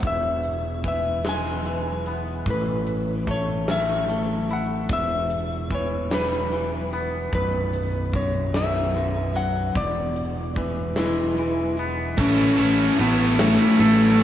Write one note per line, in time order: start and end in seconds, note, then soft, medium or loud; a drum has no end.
0.00 2.43 E1 medium
0.00 0.70 B3 medium
0.00 kick medium
0.00 closed hi-hat medium
0.04 2.07 E2 medium
0.04 0.87 E5 medium
0.43 closed hi-hat soft
0.84 1.66 E3 soft
0.84 1.28 E5 medium
0.84 kick medium
0.84 closed hi-hat soft
1.25 2.47 G#3 medium
1.25 snare medium
1.25 closed hi-hat medium
1.29 2.14 G#5 medium
1.65 3.28 E3 medium
1.65 closed hi-hat soft
2.06 2.47 B3 soft
2.06 closed hi-hat soft
2.46 4.86 A1 medium
2.46 4.50 A2 medium
2.46 kick medium
2.46 closed hi-hat medium
2.50 3.31 B4 medium
2.87 closed hi-hat soft
3.27 4.08 A3 medium
3.27 3.67 C#5 medium
3.27 kick medium
3.27 closed hi-hat soft
3.68 4.90 C#4 medium
3.68 4.53 E5 medium
3.68 snare medium
3.68 closed hi-hat medium
4.09 4.90 A3 medium
4.09 closed hi-hat soft
4.49 4.91 E4 soft
4.49 4.89 F#5 medium
4.49 closed hi-hat soft
4.89 7.29 E1 medium
4.89 6.93 E2 medium
4.89 5.75 E5 medium
4.89 kick medium
4.89 closed hi-hat medium
5.30 closed hi-hat soft
5.70 6.51 E3 medium
5.70 kick medium
5.70 closed hi-hat soft
5.75 6.14 C#5 medium
6.11 7.34 G3 medium
6.11 7.00 B4 medium
6.11 snare medium
6.11 closed hi-hat medium
6.52 7.33 E3 medium
6.52 closed hi-hat soft
6.93 10.43 B3 medium
6.93 closed hi-hat soft
7.33 9.72 B0 medium
7.33 9.36 B1 medium
7.33 8.15 B4 medium
7.33 kick medium
7.33 closed hi-hat medium
7.73 closed hi-hat soft
8.13 8.95 F#2 medium
8.13 8.57 C#5 medium
8.13 kick medium
8.13 closed hi-hat soft
8.54 9.76 B2 medium
8.54 9.39 E5 medium
8.54 snare medium
8.54 closed hi-hat medium
8.95 9.76 F#2 medium
8.95 closed hi-hat soft
9.35 9.76 F#3 medium
9.35 9.74 F#5 medium
9.35 closed hi-hat soft
9.75 12.15 E1 medium
9.75 11.78 E2 medium
9.75 10.94 D5 medium
9.75 kick medium
9.75 closed hi-hat medium
10.16 closed hi-hat medium
10.56 11.37 E3 medium
10.56 kick medium
10.56 closed hi-hat soft
10.96 12.19 G#3 medium
10.96 11.75 E4 medium
10.96 11.86 B4 medium
10.96 snare medium
10.96 closed hi-hat medium
11.37 12.19 E3 medium
11.37 closed hi-hat medium
11.77 12.19 B3 medium
11.77 closed hi-hat medium
12.18 12.47 A1 medium
12.18 12.99 A2 medium
12.18 14.21 A2 medium
12.18 14.23 E3 loud
12.18 12.60 A3 medium
12.18 12.59 C#4 medium
12.18 13.00 C#4 loud
12.18 12.59 E4 medium
12.18 12.57 A4 loud
12.18 kick loud
12.18 ride loud
12.58 12.88 A1 medium
12.58 12.98 A3 medium
12.58 13.39 C#4 medium
12.58 12.98 C#4 medium
12.58 13.00 E4 medium
12.58 13.00 A4 medium
12.58 ride medium
12.99 13.57 A1 medium
12.99 13.40 A3 medium
12.99 14.23 A3 medium
12.99 13.40 B3 medium
12.99 13.40 C#4 medium
12.99 13.39 E4 medium
12.99 13.38 A4 medium
12.99 ride medium
13.39 14.17 A3 medium
13.39 13.79 A3 medium
13.39 14.19 C#4 medium
13.39 13.80 C#4 medium
13.39 13.80 E4 medium
13.39 13.81 A4 medium
13.39 snare loud
13.39 ride loud
13.79 14.23 A1 medium
13.79 14.22 A3 medium
13.79 14.21 C#4 medium
13.79 14.21 E4 medium
13.79 14.23 A4 medium
13.79 14.19 A4 medium
13.79 ride medium
14.20 ride medium